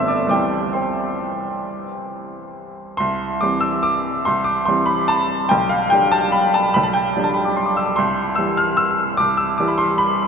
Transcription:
0.00 0.31 G1 medium
0.00 0.28 F3 soft
0.00 0.29 A3 soft
0.00 0.29 B3 soft
0.00 0.35 E5 medium
0.00 0.35 E6 loud
0.08 0.29 D5 medium
0.08 0.28 D6 medium
0.27 2.92 C2 medium
0.27 2.93 E3 soft
0.27 2.94 G3 soft
0.27 0.72 G5 medium
0.27 0.74 D6 medium
0.31 2.94 C4 soft
0.31 0.72 D5 medium
0.73 2.73 C5 soft
0.73 2.73 G5 soft
0.73 2.76 C6 medium
2.97 3.41 C2 medium
2.97 3.40 C6 loud
3.41 4.23 E3 soft
3.41 4.23 G3 soft
3.41 4.23 C4 medium
3.41 3.63 D6 loud
3.61 3.84 E6 loud
3.83 4.25 D6 loud
4.25 4.66 C2 medium
4.25 4.46 C6 loud
4.44 4.66 D6 loud
4.65 5.48 E3 soft
4.65 5.48 G3 medium
4.65 5.48 C4 medium
4.65 4.87 C6 medium
4.86 5.08 B5 loud
5.08 5.51 A5 loud
5.49 5.91 B1 medium
5.49 5.70 G5 loud
5.69 5.91 F5 loud
5.90 6.72 F3 soft
5.90 6.72 G3 soft
5.90 6.72 D4 medium
5.90 6.12 G5 loud
6.12 6.34 A5 loud
6.32 6.55 B5 loud
6.54 6.75 A5 medium
6.74 7.15 B1 medium
6.74 6.85 B5 loud
6.83 6.94 A5 medium
6.94 7.25 G5 loud
7.17 7.94 F3 soft
7.17 7.94 G3 medium
7.17 7.94 D4 medium
7.24 7.35 A5 medium
7.34 7.45 B5 medium
7.45 7.56 D6 medium
7.56 7.67 C6 medium
7.66 7.77 D6 medium
7.77 7.87 E6 medium
7.85 7.96 D6 medium
7.96 8.37 C2 medium
7.96 8.37 C6 loud
8.35 9.16 E3 medium
8.35 9.16 G3 soft
8.35 9.16 G4 medium
8.35 8.58 E6 loud
8.57 8.79 F6 loud
8.77 9.19 E6 loud
9.17 9.58 C2 medium
9.17 9.38 D6 loud
9.37 9.58 E6 loud
9.58 10.28 E3 medium
9.58 10.28 G3 medium
9.58 10.28 G4 medium
9.58 9.69 D6 loud
9.68 9.79 B5 medium
9.78 9.99 C6 loud
9.98 10.28 B5 loud

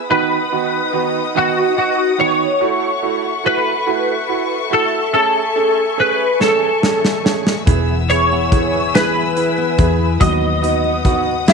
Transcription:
0.00 2.56 B4 medium
0.10 0.35 D#3 medium
0.10 0.36 B3 medium
0.10 0.35 D#4 medium
0.10 2.59 D#4 medium
0.10 0.36 F#4 loud
0.10 1.32 B4 loud
0.10 2.59 D#5 medium
0.10 5.09 F#5 medium
0.10 2.59 D#6 medium
0.52 0.77 D#3 medium
0.52 0.77 B3 medium
0.52 0.78 D#4 medium
0.52 0.78 F#4 medium
0.93 1.19 D#3 medium
0.93 1.19 B3 medium
0.93 1.19 D#4 medium
0.93 1.19 F#4 medium
1.35 1.61 D#3 loud
1.35 1.61 B3 medium
1.35 1.61 D#4 medium
1.35 1.61 F#4 medium
1.35 1.77 F#4 medium
1.76 2.02 D#4 medium
1.76 2.03 F#4 medium
1.76 2.21 F#4 medium
2.18 2.44 D#3 medium
2.18 2.44 B3 medium
2.18 2.44 D#4 medium
2.18 2.44 F#4 medium
2.18 3.46 C#5 loud
2.61 2.86 A3 medium
2.61 2.87 E4 medium
2.61 2.87 F#4 loud
2.61 7.64 A4 medium
2.61 7.64 E5 medium
2.61 7.64 C#6 medium
3.02 3.28 A3 medium
3.02 3.29 E4 medium
3.02 3.29 F#4 medium
3.44 3.70 A3 medium
3.44 3.70 E4 medium
3.44 3.70 F#4 medium
3.44 4.73 B4 loud
3.87 4.12 A3 medium
3.87 4.12 E4 medium
3.87 4.13 F#4 medium
4.29 4.54 E4 medium
4.29 4.55 F#4 medium
4.70 4.96 A3 medium
4.70 4.96 E4 medium
4.70 4.97 F#4 medium
4.70 5.12 A4 medium
5.13 5.39 A3 medium
5.13 5.39 C#4 medium
5.13 5.39 G#4 loud
5.13 6.00 A4 loud
5.13 7.65 G#5 medium
5.56 5.81 A3 medium
5.56 5.81 C#4 medium
5.56 5.81 G#4 medium
5.98 6.23 A3 medium
5.98 6.23 C#4 medium
5.98 6.24 G#4 medium
5.98 6.38 B4 loud
6.40 6.66 A3 medium
6.40 6.66 C#4 medium
6.40 6.66 G#4 medium
6.40 7.32 A4 medium
6.40 snare medium
6.82 7.08 C#4 medium
6.82 7.09 G#4 medium
6.82 snare medium
7.05 snare medium
7.24 7.50 A3 medium
7.24 7.51 C#4 medium
7.24 7.51 G#4 medium
7.24 snare medium
7.47 snare medium
7.66 9.75 E1 loud
7.66 8.93 E3 medium
7.66 7.93 B3 medium
7.66 7.93 E4 medium
7.66 7.93 G#4 loud
7.66 11.53 B4 medium
7.66 10.19 E5 medium
7.66 10.19 G#5 medium
7.66 10.19 E6 medium
7.66 kick loud
7.66 closed hi-hat loud
7.89 8.32 B3 medium
8.10 8.36 B3 medium
8.10 8.73 E4 medium
8.10 8.36 E4 medium
8.10 8.36 G#4 medium
8.10 8.94 C#5 loud
8.10 closed hi-hat medium
8.32 9.15 B3 medium
8.52 8.78 B3 medium
8.52 8.78 E4 medium
8.52 8.78 G#4 medium
8.52 9.77 G#4 medium
8.52 kick loud
8.52 closed hi-hat soft
8.74 9.35 E4 medium
8.94 10.20 E3 medium
8.94 9.20 B3 medium
8.94 9.20 E4 medium
8.94 9.21 G#4 loud
8.94 10.20 B4 loud
8.94 snare loud
8.94 closed hi-hat medium
9.16 9.57 B3 medium
9.36 9.62 E4 medium
9.36 9.98 E4 medium
9.36 9.63 G#4 medium
9.36 closed hi-hat medium
9.58 10.41 B3 medium
9.78 10.19 E2 loud
9.78 10.04 B3 medium
9.78 10.04 E4 medium
9.78 10.29 G#4 medium
9.78 10.05 G#4 medium
9.78 kick medium
9.78 closed hi-hat medium
9.99 10.29 E4 medium
10.20 11.53 D#2 loud
10.20 11.46 F#3 medium
10.20 10.46 B3 medium
10.20 10.46 D#4 medium
10.20 10.47 F#4 loud
10.20 11.51 D#5 loud
10.20 11.53 D#5 medium
10.20 11.53 F#5 medium
10.20 11.53 D#6 medium
10.20 kick loud
10.20 closed hi-hat loud
10.41 10.83 B3 medium
10.62 10.88 B3 medium
10.62 10.88 D#4 medium
10.62 11.24 D#4 medium
10.62 10.89 F#4 medium
10.62 closed hi-hat medium
10.84 11.53 B3 medium
11.05 11.31 B3 medium
11.05 11.31 D#4 medium
11.05 11.53 F#4 medium
11.05 11.31 F#4 medium
11.05 kick medium
11.05 closed hi-hat soft
11.25 11.53 D#4 medium
11.46 11.53 F#3 medium
11.46 11.53 B3 medium
11.46 11.53 D#4 medium
11.46 11.53 F#4 loud
11.46 snare loud
11.46 closed hi-hat medium

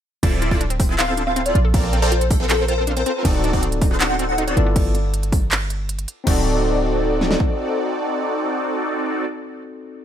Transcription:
0.23 1.53 D1 medium
0.23 0.49 C4 loud
0.23 0.26 C4 loud
0.23 0.49 E4 medium
0.23 0.49 F4 medium
0.23 0.49 A4 medium
0.23 0.49 D5 loud
0.23 kick loud
0.23 closed hi-hat medium
0.23 crash medium
0.42 0.46 E4 loud
0.42 closed hi-hat medium
0.51 0.61 C4 loud
0.51 0.61 E4 medium
0.51 0.61 F4 medium
0.51 0.54 F4 medium
0.51 0.61 A4 medium
0.51 0.61 D5 loud
0.51 kick medium
0.61 0.65 D4 medium
0.61 closed hi-hat medium
0.70 0.75 C4 medium
0.70 closed hi-hat medium
0.80 0.82 C4 loud
0.80 kick loud
0.80 open hi-hat loud
0.89 1.54 C4 loud
0.89 1.54 E4 medium
0.89 1.54 F4 medium
0.89 1.54 A4 medium
0.89 1.54 C5 loud
0.99 1.03 E4 loud
0.99 1.05 F5 medium
0.99 clap loud
0.99 closed hi-hat medium
0.99 crash soft
1.08 1.11 F4 medium
1.08 1.14 F5 medium
1.17 1.22 D4 medium
1.17 closed hi-hat medium
1.27 1.31 C4 medium
1.27 1.42 F5 medium
1.36 1.39 C4 loud
1.36 closed hi-hat medium
1.46 1.59 D5 loud
1.46 closed hi-hat medium
1.55 3.04 A#1 medium
1.55 1.60 F4 loud
1.55 closed hi-hat medium
1.65 1.67 A4 medium
1.74 2.00 C4 loud
1.74 1.78 D4 medium
1.74 2.00 F4 medium
1.74 2.00 A4 medium
1.74 2.00 A#4 medium
1.74 2.00 D5 loud
1.74 kick loud
1.74 closed hi-hat medium
1.74 crash soft
1.84 1.88 C4 medium
1.93 1.96 C4 loud
1.93 closed hi-hat medium
2.02 2.12 C4 loud
2.02 2.12 F4 medium
2.02 2.12 A4 medium
2.02 2.12 A#4 medium
2.02 2.29 C5 medium
2.02 2.12 D5 loud
2.12 2.16 F4 loud
2.12 closed hi-hat medium
2.21 2.24 A4 medium
2.21 closed hi-hat medium
2.31 2.35 D4 medium
2.31 2.37 A4 medium
2.31 kick loud
2.31 open hi-hat loud
2.40 3.23 C4 loud
2.40 2.44 C4 medium
2.40 3.23 F4 medium
2.40 3.23 A4 medium
2.40 2.46 A4 medium
2.40 3.23 A#4 medium
2.40 3.23 C5 loud
2.49 2.52 C4 loud
2.49 2.64 A4 loud
2.49 clap loud
2.49 closed hi-hat medium
2.49 crash soft
2.68 2.73 F4 loud
2.68 2.83 C5 loud
2.68 closed hi-hat medium
2.78 2.80 A4 medium
2.87 2.92 D4 medium
2.87 closed hi-hat medium
2.97 3.01 C4 medium
2.97 3.29 C5 medium
2.97 closed hi-hat medium
3.06 3.09 C4 loud
3.06 closed hi-hat medium
3.23 4.55 D1 medium
3.23 4.52 C4 medium
3.23 3.51 C4 loud
3.23 4.53 D#4 medium
3.23 3.51 D#4 medium
3.23 3.29 D#4 loud
3.23 4.53 F#4 medium
3.23 3.51 F#4 medium
3.23 3.51 A4 medium
3.23 4.54 A4 medium
3.23 3.51 D5 loud
3.23 4.54 D5 loud
3.23 kick loud
3.23 closed hi-hat medium
3.23 crash soft
3.35 3.37 F#4 medium
3.44 3.48 D4 medium
3.44 closed hi-hat medium
3.53 3.63 C4 loud
3.53 3.58 C4 medium
3.53 3.63 D#4 medium
3.53 3.63 F#4 medium
3.53 3.63 A4 medium
3.53 3.63 D5 loud
3.53 kick medium
3.63 3.65 C4 loud
3.63 closed hi-hat medium
3.72 closed hi-hat medium
3.82 3.86 D#4 loud
3.82 kick loud
3.82 open hi-hat medium
3.91 4.56 C4 loud
3.91 4.56 D#4 medium
3.91 4.56 F#4 medium
3.91 3.94 F#4 medium
3.91 4.56 A4 medium
3.91 4.56 C5 loud
4.00 4.05 D4 medium
4.00 4.06 F#5 medium
4.00 clap loud
4.00 closed hi-hat medium
4.00 crash soft
4.10 4.14 C4 medium
4.10 4.16 F#5 medium
4.19 4.22 C4 loud
4.19 closed hi-hat medium
4.29 4.43 F#5 loud
4.38 4.43 D#4 loud
4.38 closed hi-hat medium
4.47 4.50 F#4 medium
4.47 4.61 D5 medium
4.47 closed hi-hat medium
4.56 6.06 G1 medium
4.56 4.94 B3 medium
4.56 4.61 D4 medium
4.56 4.95 E4 medium
4.56 4.95 F4 medium
4.56 4.95 A4 medium
4.56 4.95 D5 loud
4.56 closed hi-hat medium
4.66 4.71 B3 medium
4.76 kick loud
4.76 closed hi-hat medium
4.76 crash soft
4.95 closed hi-hat medium
5.14 closed hi-hat medium
5.23 closed hi-hat medium
5.32 kick loud
5.32 open hi-hat medium
5.51 clap loud
5.51 closed hi-hat medium
5.51 crash soft
5.70 closed hi-hat medium
5.89 closed hi-hat medium
5.99 closed hi-hat medium
6.08 closed hi-hat medium
6.24 7.36 D1 loud
6.24 9.22 C4 medium
6.24 6.44 C4 loud
6.24 9.25 C4 medium
6.24 9.24 D#4 medium
6.24 9.25 D#4 medium
6.24 9.25 F#4 medium
6.24 9.25 A4 medium
6.24 9.25 D5 loud
6.24 kick loud
6.24 crash medium
6.28 9.27 A4 medium
6.28 9.28 D5 medium
7.21 snare medium
7.31 snare medium
7.40 kick loud

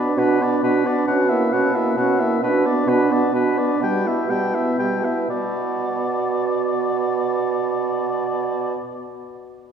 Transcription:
0.00 0.12 B2 soft
0.00 0.20 B3 soft
0.00 0.18 D4 soft
0.00 0.20 D5 soft
0.17 0.57 B2 soft
0.17 0.43 D4 soft
0.17 0.42 F#4 soft
0.17 0.44 B4 soft
0.40 0.63 B3 soft
0.40 0.63 D4 soft
0.40 0.63 D5 soft
0.63 1.03 B2 soft
0.63 0.87 D4 soft
0.63 0.86 F#4 soft
0.63 0.88 B4 soft
0.85 1.08 B3 soft
0.85 1.07 D4 soft
0.85 1.07 D5 soft
1.07 1.47 B2 soft
1.07 1.32 C#4 soft
1.07 1.33 F#4 soft
1.07 1.31 F#5 soft
1.30 1.54 A#3 soft
1.30 1.56 E4 soft
1.30 1.55 E5 soft
1.52 1.92 B2 medium
1.52 1.77 C#4 soft
1.52 1.78 F#4 soft
1.52 1.77 F#5 soft
1.75 1.97 A#3 soft
1.75 1.98 E4 soft
1.75 1.98 E5 soft
1.97 2.36 B2 soft
1.97 2.23 C#4 soft
1.97 2.22 F#4 soft
1.97 2.21 F#5 soft
2.20 2.43 A#3 soft
2.20 2.42 E4 soft
2.20 2.42 E5 soft
2.42 2.82 B2 soft
2.42 2.68 D4 soft
2.42 2.67 F#4 soft
2.42 2.68 B4 soft
2.66 2.90 B3 soft
2.66 2.89 D4 soft
2.66 2.90 D5 soft
2.87 3.28 B2 soft
2.87 3.13 D4 soft
2.87 3.13 F#4 soft
2.87 3.14 B4 soft
3.11 3.34 B3 soft
3.11 3.34 D4 soft
3.11 3.35 D5 soft
3.33 3.75 B2 soft
3.33 3.60 D4 soft
3.33 3.60 F#4 soft
3.33 3.60 B4 soft
3.58 3.82 B3 soft
3.58 3.81 D4 soft
3.58 3.82 D5 soft
3.81 4.23 B2 soft
3.81 4.08 G3 soft
3.81 4.07 G4 soft
3.81 4.09 G5 soft
4.05 4.32 B3 soft
4.05 4.30 E4 soft
4.05 4.32 E5 soft
4.28 4.73 B2 soft
4.28 4.56 G3 soft
4.28 4.55 G4 soft
4.28 4.57 G5 soft
4.53 4.79 B3 soft
4.53 4.78 E4 soft
4.53 4.79 E5 soft
4.78 5.24 B2 soft
4.78 5.06 G3 soft
4.78 5.06 G4 soft
4.78 5.07 G5 soft
5.04 5.30 B3 soft
5.04 5.30 E4 soft
5.04 5.30 E5 soft
5.29 8.75 B2 soft
5.29 8.77 B3 soft
5.29 8.76 F#4 soft
5.29 8.77 D5 soft

